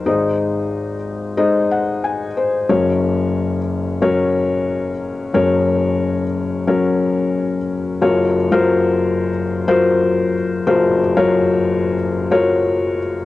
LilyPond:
<<
  \new Staff \with { instrumentName = "Felt piano" } { \time 4/4 \key ges \lydian \tempo 4 = 91 << { r2 r8 ges''8 aes''8 c''8 | r1 | r1 | r1 |
r1 | } \\ { <aes ees' c'' ees''>4~ <aes ees' c'' ees''>16 r8. <aes ees' c'' ees''>4~ <aes ees' c'' ees''>16 r8. | <ges des' bes' des''>4~ <ges des' bes' des''>16 r8. <ges des' bes' des''>4~ <ges des' bes' des''>16 r8. | <ges des' bes' des''>4~ <ges des' bes' des''>16 r8. <ges des' bes' des''>4~ <ges des' bes' des''>16 r8. | <ges f' bes' des''>8 r16 <ges f' bes' c''>4~ <ges f' bes' c''>16 r8 <ges f' bes' c''>4 r8 |
<ges f' bes' c''>8 r16 <ges f' bes' des''>4~ <ges f' bes' des''>16 r8 <ges f' bes' des''>4 r8 | } >> }
  \new Staff \with { instrumentName = "Felt piano" } { \clef bass \time 4/4 \key ges \lydian <aes,, aes,>1 | <ges,, ges,>1 | <ges,, ges,>1 | <ges,, ges,>1 |
<ges,, ges,>1 | }
>>